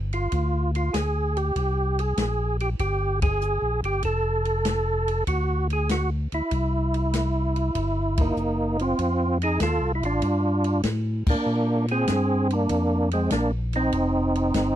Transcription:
Already playing: G1
0.13 F4, ride
0.32 D2, kick, ride
0.75 F4, ride
0.93 D2 G#4, snare, hi-hat pedal, ride
1.37 G4, ride
1.56 C2, kick, ride
1.99 G#4, ride
2.17 A#1, snare, hi-hat pedal, ride
2.60 G4, ride
2.79 G1 G4, kick, ride
3.22 G#4, kick, ride
3.41 hi-hat pedal
3.62 A#1
3.83 G1 G4, ride
4.03 F1 A4, kick, ride
4.45 ride
4.65 snare, hi-hat pedal, ride
5.08 ride
5.27 D2 F#4, kick, ride
5.70 G#4, ride
5.89 F#4, snare, hi-hat pedal, ride
6.32 D2 E4, ride
6.51 C2, kick, ride
6.94 ride
7.13 snare, hi-hat pedal, ride
7.56 ride
7.75 G1, kick, ride
8.17 A#3 D#4, kick, ride
8.37 F#1, hi-hat pedal
8.79 C4 F4, ride
8.99 F2, kick, ride
9.42 D#4 G#4, ride
9.60 D#2 F4 A4, kick, snare, hi-hat pedal, ride
9.81 C2
9.95 E4
10.02 A1 F4, ride
10.06 D4
10.22 G2, kick, ride
10.64 ride
10.83 A2, kick, snare, hi-hat pedal, ride
11.26 A2 A#3 D4, kick, crash
11.46 A#2
11.88 C4 G#4, ride
12.07 G2, kick, snare, hi-hat pedal, ride
12.50 A#3 D4, ride
12.69 F2, kick, ride
13.11 G#3 C4, ride
13.30 A#1 A#3 D4, kick, snare, hi-hat pedal, ride
13.73 C4 D#4, ride
13.92 F1, kick, ride
14.35 ride
14.54 G1, kick, snare, hi-hat pedal, ride

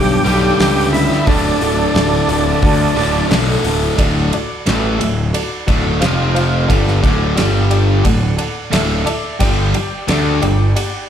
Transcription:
Already playing: B1 G2 D3 G3 B3 D4 G4 A4
0.24 B1 G2 D3 G3 B3 D4 G4, open hi-hat
0.58 C#2 G2 D3 G3 B3 D4 G4, snare, open hi-hat
0.92 G3 B3 D4 E4 G4, open hi-hat
1.12 snare
1.25 D1 D2 A2 D3 A3 D4 F#4 A4, kick, open hi-hat
1.60 D1 A3 D4 F#4 A4, open hi-hat
1.94 D1 A3 D4 F#4 A4, snare, open hi-hat
2.28 D1 A3 D4 F#4 A4, open hi-hat
2.62 D2 A3 D4 F#4 A4, kick, open hi-hat
2.94 D1 D2 A2 D3 A3 D4 F#4 A4, open hi-hat
3.28 B1 D2 A2 D3 A3 D4 F#4 A4, snare, open hi-hat
3.64 D1 A3 D4 F#4 A4, open hi-hat
3.97 D1 D2 A2 D3 F#4 A4 D5, kick, ride
4.32 F#4 A4 D5, muted distorted electric guitar stroke, muted picked electric bass stroke, ride
4.66 A1 A2 E3 A3 F#4 A4 D5, snare, ride
4.99 D1 D2 A2 F#4 A4 E5, ride
5.33 F#4 A4 D5, ride
5.66 D1 D2 A2 D3 F#4 A4 D5, kick, ride
6.00 F1 F2 C3 F3 F4 C5 F5, snare, ride
6.34 F4 C5 F5, ride
6.67 G1 G2 D3 G3 A4 D5 F#5, kick, ride
6.87 snare
7.01 D1 D2 A2 D3 A4 D5 F#5, kick, ride
7.36 G1 G2 D3 G3 G4 D5 G5, snare, ride
7.70 G4 D5 G5, ride
8.04 D1 D2 A2 A4 D5 F#5, kick, ride
8.37 A4 D5 F#5, ride
8.71 D1 D2 A2 D3 A4 D5 E5, snare, ride
9.05 A4 D5 E5, muted distorted electric guitar stroke, muted picked electric bass stroke, ride
9.39 G1 G2 D3 G3 G4 D5 G5, kick, ride
9.74 G4 D5 G5, muted distorted electric guitar stroke, muted picked electric bass stroke, ride
10.08 D2 D3 A3 D4 G4 D5 E5, snare, ride
10.41 G1 G2 D3 G4 D5 G5, ride
10.75 G4 D5 F#5, ride

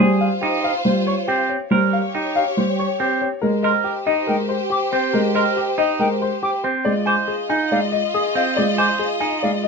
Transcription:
0.00 G3 F4 G#4 C5
0.21 F5
0.41 D#4 G4
0.64 F5
0.85 G3 C5
1.07 C#5 C#6
1.28 C4 G4
1.49 C#5
1.71 G3 G4 A#4 C5 C#5
1.93 F5
2.15 D#4 G4
2.35 F5
2.57 G3 C5
2.78 C#5 C#6
3.00 C4 G4
3.21 C#5
3.42 G#3 G4 A#4 C5
3.63 A#4 D#5 C6
3.84 G4
4.06 D#4 D#5
4.27 G#3 A#4 G5
4.49 C5
4.70 G4 D6
4.92 C4 C5
5.13 G#3 A#4
5.35 A#4 D#5 C6
5.57 G4
5.78 D#4 D#5
5.99 G#3 A#4 G5
6.22 C5
6.43 G4 D6
6.64 C4 C5
6.85 G#3 F4 D5 D#5
7.06 C5 G#5 D6
7.28 G#4
7.49 D#4 G#5
7.71 G#3 D5 F5
7.92 D#5
8.14 G#4 D#6
8.35 C4 D#5 F5
8.57 G#3 D5
8.78 C5 G#5 D6
8.99 G#4
9.20 D#4 G#5
9.43 G#3 D5 F5
9.64 D#5

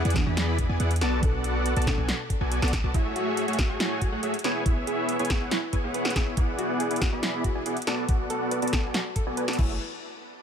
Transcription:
Already playing: E3 D4 F#4 G#4
0.05 E2 B3 E4 G#4 D5 F#5, closed hi-hat
0.10 E3, closed hi-hat
0.15 D4 F#4 G#4, kick, snare, closed hi-hat
0.26 E2 B3 E4 G#4 D5 B5
0.37 snare, closed hi-hat
0.58 kick, closed hi-hat
0.69 E2 B3 E4 G#4 D5 G#5
0.80 E2 B3 E4 G#4 D5 F#5, closed hi-hat
0.91 closed hi-hat
0.96 closed hi-hat
1.01 B1 B3 F#4 A4 D5 A5, snare, closed hi-hat
1.21 B1 B2 B3 D4 F#4 A4 D5 F#5, kick, closed hi-hat
1.25 A4
1.44 closed hi-hat
1.66 closed hi-hat
1.76 B1 B3 F#4 A4 D5 A5, closed hi-hat
1.82 B2, closed hi-hat
1.87 B3 D4 A4, kick, snare, closed hi-hat
1.98 B1 B3 F#4 A4 D5 G#5
2.09 snare, closed hi-hat
2.30 kick, closed hi-hat
2.41 B1 B3 F#4 A4 D5 G#5
2.52 closed hi-hat
2.62 B1 B3 F#4 A4 D5 A5, snare, closed hi-hat
2.68 closed hi-hat
2.73 kick, snare, closed hi-hat
2.84 B1 B3 F#4 A4 D5 A5
2.94 A3 E4 F#4 G#4 C#5 E5, kick, closed hi-hat
3.16 F#4, closed hi-hat
3.37 G#4, closed hi-hat
3.48 A3 F#4 G#4 C#5 E5, closed hi-hat
3.53 closed hi-hat
3.59 F#4, kick, snare, closed hi-hat
3.70 A3 F#4 G#4 C#5 G#5
3.80 E4, snare, closed hi-hat
4.01 F#4, kick, closed hi-hat
4.12 A3 F#4 G#4 C#5 F#5
4.23 A3 F#4 G#4 C#5 E5, closed hi-hat
4.34 closed hi-hat
4.39 closed hi-hat
4.44 B3 E4 G#4 C#5 G#5, snare, closed hi-hat
4.66 B3 E4 C#5, kick, closed hi-hat
4.87 G#4, closed hi-hat
5.09 B4, closed hi-hat
5.19 B3 E4 G#4 C#5 G#5, closed hi-hat
5.25 closed hi-hat
5.30 G#4, kick, snare, closed hi-hat
5.41 B3 E4 G#4 C#5 F#5
5.51 E4, snare, closed hi-hat
5.73 B3 E4 G#4 C#5 G#5, kick, closed hi-hat
5.84 B3 E4 G#4 C#5 F#5
5.94 B4, closed hi-hat
6.05 snare, closed hi-hat
6.10 closed hi-hat
6.16 B3 E4 G#4 E5, kick, snare, closed hi-hat
6.37 B3 E4 G#4 D5 F#5, kick, closed hi-hat
6.59 F#4, closed hi-hat
6.80 G#4, closed hi-hat
6.91 B3 E4 G#4 D5 F#5, closed hi-hat
6.96 closed hi-hat
7.01 F#4, kick, snare, closed hi-hat
7.12 B3 E4 G#4 D5 B5
7.23 E4, snare, closed hi-hat
7.44 F#4, kick, closed hi-hat
7.55 B3 E4 G#4 D5 G#5
7.66 B3 E4 G#4 D5 F#5, closed hi-hat
7.77 closed hi-hat
7.82 closed hi-hat
7.87 B3 F#4 A4 D5 A5, snare, closed hi-hat
8.09 B3 F#4 A4 F#5, kick, closed hi-hat
8.30 A4, closed hi-hat
8.51 B4, closed hi-hat
8.62 B3 F#4 A4 D5 A5, closed hi-hat
8.68 closed hi-hat
8.73 A4, kick, snare, closed hi-hat
8.84 B3 F#4 A4 D5 G#5
8.94 F#4, snare, closed hi-hat
9.16 A4, kick, closed hi-hat
9.27 B3 F#4 A4 D5 G#5
9.37 B4, closed hi-hat
9.48 B3 F#4 A4 D5 A5, snare, closed hi-hat
9.53 closed hi-hat
9.59 F#1 A3 E4 F#4 G#4 C#5 E5, kick, crash

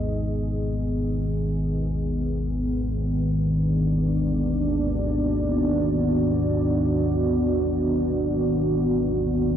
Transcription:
Already playing: G#1 D#2 B3 D#4 G#4 D#5
3.30 D4
3.44 D5
4.54 F#4

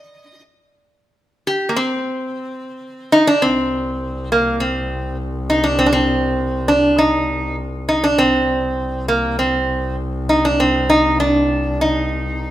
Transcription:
Already playing: D#5
1.47 G4
1.69 A#3
1.76 C4
3.12 D#4
3.27 D4
3.42 C2 C4
4.32 A#3
4.60 C4
5.50 D#4
5.64 D4
5.79 C4
5.86 D4
5.93 C4
6.68 D4
6.98 D#4
7.89 D#4
8.04 D4
8.18 C2 C4
9.08 A#3
9.39 C4
10.29 D#4
10.45 D4
10.60 C4
10.90 D#4
11.20 D4
11.81 D#4

